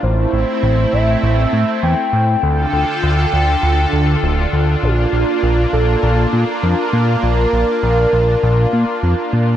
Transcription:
<<
  \new Staff \with { instrumentName = "Soft synth lead" } { \time 4/4 \key bes \lydian \tempo 4 = 100 c''4. e''4. g''4~ | g''1 | f'4. a'4. bes'4~ | bes'1 | }
  \new Staff \with { instrumentName = "Analog synth pad" } { \time 4/4 \key bes \lydian << { <a e'>1 | <d d' a'>1 | bes1~ | bes1 | } \\ { c'1 | f'1~ | f'1~ | f'1 | } >> }
  \new Staff \with { instrumentName = "Analog synth bass" } { \clef bass \time 4/4 \key bes \lydian a,,8 a,,8 a,,8 a,,8 a,,8 a,8 e,8 a,8 | d,8 d,8 d,8 d,8 d,8 d,8 d,,8 d,8 | bes,,8 bes,,8 bes,,8 bes,,8 bes,,8 bes,8 f,8 bes,8 | bes,,8 bes,,8 bes,,8 bes,,8 bes,,8 bes,8 f,8 bes,8 | }
>>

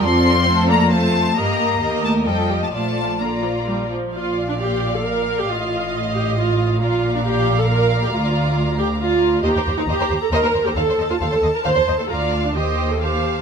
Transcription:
<<
  \new Staff \with { instrumentName = "Violin section" } { \time 3/4 \key bes \major \tempo 4 = 135 c'''4. bes''8 a''4 | bes''4. a''8 g''8. a''16 | a''4 bes''4. r8 | f''2.~ |
f''2. | bes''2.~ | bes''2. | bes''2. |
a''2. | bes''8 a''8 g''4 a''4 | }
  \new Staff \with { instrumentName = "Violin section" } { \time 3/4 \key bes \major << { d''4 c''8 d''8 c''4 | ees''4 ees''4 ees''4 | d''4 d''4. r8 | f''2.~ |
f''2. | f''2.~ | f''2. | ees''16 bes'16 c''16 bes'16 ees''16 bes'16 c''16 r16 ees''16 bes'16 c''16 bes'16 |
f''16 c''16 ees''16 c''16 f''16 c''16 ees''16 r16 f''16 c''16 ees''16 c''16 | f''4 ees''4 f''4 | } \\ { a'8 a'8 a'4 f'4 | bes'4 bes'4 a'8 g'8 | f'4 f'4. r8 | d''2. |
ees''2. | d''2.~ | d''2. | c''16 c''16 c''16 c''16 c''16 c''16 c''16 r16 c''16 c''16 c''16 c''16 |
c''16 c''16 c''16 c''16 c''16 c''16 c''16 r16 c''16 c''16 c''16 c''16 | d''4 c''4 c''4 | } >> }
  \new Staff \with { instrumentName = "Viola section" } { \time 3/4 \key bes \major << { f'2 c'4 | g'4 g'4 f'4 | f'4 d8 f8 g8 f8 | f'8. d'16 g'8. a'16 bes'8. g'16 |
f'4. g'8 f'4 | f'8. d'16 g'8. a'16 bes'8. g'16 | f'4. g'8 f'4 | g'8. ees'16 g'8. a'16 bes'8. g'16 |
a'8. f'16 a'8. bes'16 c''8. a'16 | f'8. d'16 g'8. a'16 g'4 | } \\ { f4 a4 a4 | bes4 bes4 f4 | f4 r2 | r2. |
r2. | r2. | r2. | r2. |
r2. | r2. | } >> }
  \new Staff \with { instrumentName = "Cello section" } { \clef bass \time 3/4 \key bes \major c'4. bes8 a4 | bes4. a8 g8. a16 | a4 bes4. r8 | bes,2. |
a,2. | bes,2. | d,2. | ees,16 ees,16 ees,16 ees,16 ees,16 ees,16 ees,16 r16 ees,16 ees,16 ees,16 ees,16 |
ees,16 ees,16 ees,16 ees,16 ees,16 ees,16 ees,16 r16 ees,16 ees,16 ees,16 ees,16 | d,4 ees,2 | }
  \new Staff \with { instrumentName = "Double bass section" } { \clef bass \time 3/4 \key bes \major f,2. | g,4 ees,4 f,4 | bes,,2~ bes,,8 r8 | bes,,2. |
a,,2. | bes,,2. | d,2. | ees,16 r16 ees,16 r16 ees,16 r16 ees,16 r16 ees,16 r16 ees,16 r16 |
ees,16 r16 ees,16 r16 ees,16 r16 ees,16 r16 ees,16 r16 ees,16 r16 | d,4 ees,2 | }
>>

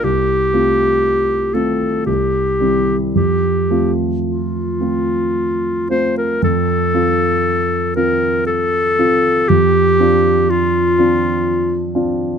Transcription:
<<
  \new Staff \with { instrumentName = "Clarinet" } { \time 3/4 \key f \major \tempo 4 = 59 g'4. a'8 g'4 | g'8. r16 f'4. c''16 bes'16 | a'4. bes'8 a'4 | g'4 f'4. r8 | }
  \new Staff \with { instrumentName = "Grand piano" } { \time 3/4 \key f \major c,8 <a c' f'>4 <a c' f'>8 c,8 <g c' e'>8 | f,8 <a c' f'>4 <a c' f'>4 <a c' f'>8 | f,8 <c' f'>4 <c' f'>4 <c' f'>8 | f,8 <c' d' f'>4 <c' d' f'>4 <c' d' f'>8 | }
>>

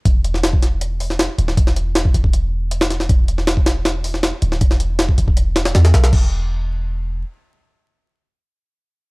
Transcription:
<<
  \new Staff \with { instrumentName = "808-style bass" } { \clef bass \time 4/4 \key d \mixolydian \tempo 4 = 158 e,,2. r8 d,,8 | e,,4. e,,2~ e,,8 | e,,2. r8 d,,8 | e,,4. e,,4. e,8 b,,8 |
e,,2. r4 | r1 | }
  \new DrumStaff \with { instrumentName = "Drums" } \drummode { \time 4/4 <hh bd>8 hh16 sn16 <hh sn>16 bd16 <hh sn>8 hh8 hho16 sn16 <hh sn>8 hh16 sn16 | <hh bd>16 sn16 hh8 <hh sn>16 bd16 hh16 bd16 hh4 hh16 sn16 <hh sn>16 sn16 | <hh bd>8 hh16 sn16 <hh sn>16 bd16 <hh sn>8 <hh sn>8 hho16 sn16 <hh sn>8 hh16 sn16 | <hh bd>16 sn16 hh8 <hh sn>16 bd16 hh16 bd16 hh8 <hh sn>16 <hh sn>16 <hh sn>16 <hh sn>16 <hh sn>16 <hh sn>16 |
<cymc bd>4 r4 r4 r4 | r4 r4 r4 r4 | }
>>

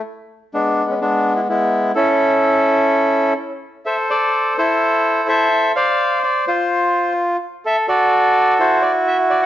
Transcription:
\new Staff \with { instrumentName = "Bandoneon" } { \time 4/4 \key a \major \tempo 4 = 127 << { r4 d'8. cis'16 d'8. e'16 e'4 | a'2. r4 | \key a \minor e''8 d''4 c''4. e''4 | f''4 d''8 c''4. r4 |
e''8 d''4. c''8 d''8 e''8 d''16 fis''16 | } \\ { r4 <gis b>4 <gis b>4 <gis b>4 | <cis' e'>2. r4 | <a' c''>8 a'4 <e' a'>4. <a' c''>4 | <c'' d''>4. f'2 r8 |
a'8 <fis' a'>4. <e' fis'>2 | } >> }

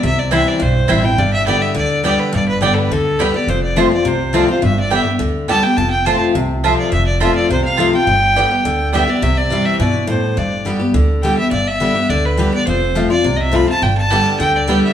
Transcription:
<<
  \new Staff \with { instrumentName = "Fiddle" } { \time 4/4 \key g \mixolydian \tempo 4 = 209 e''8 d''8 e''8 d''8 c''4 e''8 g''8 | d''8 e''8 d''8 e''8 d''4 d''8 b'8 | d''8 b'8 d''16. a'32 b'8 a'4 b'8 d''8 | c''8 d''8 c''8 d''8 c''4 d''8 c''8 |
e''8 d''8 e''8 r4. a''8 g''8 | a''8 g''8 a''8 r4. e''8 d''8 | e''8 d''8 e''8 d''8 c''8 f''4 g''8~ | g''2. e''8 d''8 |
e''8 d''4 e''8 d''4 c''4 | d''4 r2 g''8 e''8 | d''8 e''4. d''8 b'4 d''8 | c''4. d''8.~ d''32 ees''32 e''8 b''8 a''8 |
g''8 a''4. g''8 d''4 e''8 | }
  \new Staff \with { instrumentName = "Mandolin" } { \time 4/4 \key g \mixolydian r4 <c' e' c'' g''>8 r4. <c' e' c'' g''>8 r8 | r4 <b g' d'' g''>8 r4. <b g' d'' g''>8 r8 | r4 <b g' d'' g''>8 r4. <b g' d'' g''>8 r8 | r4 <c' f' c'' a''>8 r4. <c' f' c'' a''>8 r8 |
r4 <b g' d'' g''>8 r4. <b g' d'' g''>8 r8 | r4 <c' f' c'' a''>8 r4. <c' f' c'' a''>8 r8 | r4 <c' f' c'' a''>8 r4. <c' f' c'' a''>8 r8 | r4 <b g' d'' g''>8 r4. <b g' d'' g''>8 r8 |
r1 | r1 | r1 | r1 |
r4 <b g' d'' g''>8 r4. <b g' d'' g''>8 r8 | }
  \new Staff \with { instrumentName = "Steel-string acoustic guitar" } { \time 4/4 \key g \mixolydian << { r4 <e g c' e'>4 r4 <e g c' e'>8 <c' e'>8 | r4 <d g b g'>4 r4 <d g b g'>4 | r4 <d g b g'>4 r4 <d g b g'>8 <b g'>8 | r4 <f a c' f'>8 <c' f'>8 r4 <f a c' f'>8 <c' f'>8 |
r4 <d g b g'>8 <b g'>8 r4 <d g b g'>8 <b g'>8 | r4 <f a c' f'>4 r4 <f a c' f'>4 | r4 <f a c' f'>4 r4 <f a c' f'>8 <c' f'>8 | r4 <d g b g'>8 <b g'>8 r4 <d g b g'>8 <b g'>8 |
r4 <e g c' e'>4 r2 | r4 <d g b g'>8 <b g'>8 r4 <d g b g'>8 <b g'>8 | r4 <d g b g'>8 <b g'>8 r4 <d g b g'>8 <b g'>8 | r4 <f a c' f'>8 <c' f'>8 r4 <f a c' f'>8 <c' f'>8 |
r4 <d g b g'>4 r4 <d g b g'>4 | } \\ { c2 g,2 | g,2 d2 | g,2 d2 | f,2 c2 |
g,2 d2 | f,2 c2 | f,2 c2 | g,2 d2 |
c2 b,4 a,4 | g,2 d2 | g,2 d2 | f,2 c2 |
g,2 d2 | } >> }
  \new Staff \with { instrumentName = "Upright bass" } { \clef bass \time 4/4 \key g \mixolydian c,2 b,,4 a,,4 | g,,2 d,2 | g,,2 d,2 | f,,2 c,2 |
g,,2 d,2 | f,,2 c,2 | f,,2 c,2 | g,,2 d,2 |
c,2 g,2 | g,,2 d,2 | g,,2 d,2 | f,,2 c,2 |
g,,2 d,2 | }
>>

